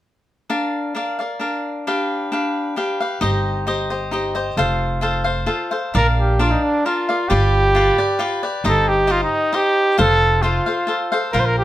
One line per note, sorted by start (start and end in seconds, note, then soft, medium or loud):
0.50 0.94 D4 soft
0.50 0.94 A#4 soft
0.50 0.96 D5 soft
0.50 0.96 F5 medium
0.95 1.19 D4 soft
0.95 1.19 A#4 soft
0.95 1.19 D5 soft
0.95 1.18 F5 soft
1.19 1.39 A#4 soft
1.19 1.40 D5 soft
1.19 1.40 F5 soft
1.40 1.86 D4 soft
1.40 1.87 A#4 soft
1.40 1.87 D5 soft
1.40 1.87 F5 soft
1.87 2.31 D4 soft
1.87 2.32 G4 soft
1.87 2.32 B4 medium
1.87 2.32 F5 medium
2.32 2.75 D4 soft
2.32 2.76 G4 soft
2.32 2.76 B4 soft
2.32 2.76 F5 medium
2.76 3.00 D4 soft
2.76 3.01 G4 soft
2.76 3.00 B4 soft
2.76 2.99 F5 soft
3.00 3.20 G4 soft
3.00 3.22 B4 soft
3.00 3.21 F5 soft
3.21 4.54 G1 medium
3.21 3.65 D#4 medium
3.21 3.66 G4 medium
3.21 3.67 C5 medium
3.21 3.67 D#5 medium
3.67 3.90 D#4 soft
3.67 3.90 G4 soft
3.67 3.89 C5 soft
3.67 3.89 D#5 medium
3.90 4.11 G4 soft
3.90 4.12 C5 soft
3.90 4.12 D#5 soft
4.11 4.35 D#4 soft
4.11 4.35 G4 soft
4.11 4.34 C5 soft
4.11 4.34 D#5 medium
4.35 4.57 G4 soft
4.35 4.57 C5 soft
4.35 4.57 D#5 soft
4.57 5.46 F1 medium
4.57 5.01 F4 medium
4.57 5.01 A4 medium
4.57 5.02 C5 medium
4.57 5.03 F5 medium
5.01 5.25 F4 soft
5.01 5.25 A4 medium
5.01 5.24 C5 medium
5.01 5.23 F5 soft
5.24 5.45 A4 soft
5.24 5.46 C5 soft
5.24 5.47 F5 soft
5.46 5.71 F4 soft
5.46 5.71 A4 soft
5.46 5.70 C5 soft
5.46 5.70 F5 soft
5.71 5.95 A4 soft
5.71 5.94 C5 soft
5.71 5.93 F5 soft
5.94 6.54 A#1 medium
5.94 6.39 D4 soft
5.94 6.39 A#4 medium
5.94 6.07 A#4 medium
5.94 6.40 D5 medium
5.94 6.40 F5 medium
6.19 6.42 G4 medium
6.39 6.84 D4 medium
6.39 6.52 F4 medium
6.39 6.85 A#4 soft
6.39 6.85 D5 medium
6.39 6.86 F5 soft
6.51 6.64 D#4 medium
6.63 6.87 D4 medium
6.86 7.09 D4 soft
6.86 7.30 F4 medium
6.86 7.09 A#4 soft
6.86 7.08 D5 soft
6.86 7.08 F5 soft
7.09 7.30 A#4 soft
7.09 7.30 D5 soft
7.09 7.31 F5 soft
7.29 7.89 G1 medium
7.29 7.74 F4 medium
7.29 8.42 G4 medium
7.29 7.76 G4 medium
7.29 7.75 B4 medium
7.29 7.75 D5 medium
7.75 7.98 F4 medium
7.75 7.99 G4 soft
7.75 7.98 B4 medium
7.75 7.97 D5 medium
7.98 8.18 G4 soft
7.98 8.19 B4 soft
7.98 8.19 D5 soft
8.19 8.42 F4 soft
8.19 8.43 G4 medium
8.19 8.42 B4 medium
8.19 8.42 D5 medium
8.43 8.64 G4 soft
8.43 8.65 B4 soft
8.43 8.65 D5 soft
8.64 9.23 G1 medium
8.64 9.06 D#4 medium
8.64 9.07 G4 medium
8.64 8.90 A4 medium
8.64 9.09 C5 medium
8.64 9.08 D#5 medium
8.88 9.12 G4 medium
9.07 9.51 D#4 medium
9.07 9.22 F4 medium
9.07 9.53 G4 medium
9.07 9.53 C5 soft
9.07 9.52 D#5 medium
9.23 9.56 D#4 medium
9.53 9.97 D#4 soft
9.53 9.98 G4 soft
9.53 9.99 G4 medium
9.53 9.98 C5 soft
9.53 9.98 D#5 soft
9.98 10.58 F1 medium
9.98 10.42 F4 medium
9.98 10.42 A4 medium
9.98 10.44 A4 loud
9.98 10.43 C5 medium
9.98 10.44 F5 medium
10.42 11.12 F4 medium
10.42 10.67 F4 medium
10.42 10.67 A4 medium
10.42 10.66 C5 medium
10.42 10.65 F5 medium
10.66 10.87 A4 soft
10.66 10.88 C5 soft
10.66 10.87 F5 soft
10.87 11.11 F4 soft
10.87 11.12 A4 soft
10.87 11.11 C5 soft
10.87 11.11 F5 soft
11.12 11.34 A4 soft
11.12 11.33 C5 soft
11.12 11.33 F5 soft
11.32 11.64 A#1 medium
11.32 11.64 F4 soft
11.32 11.41 A#4 medium
11.32 11.64 A#4 medium
11.32 11.64 C5 medium
11.32 11.64 F5 medium
11.40 11.47 C5 medium
11.45 11.58 A#4 medium
11.58 11.64 G4 medium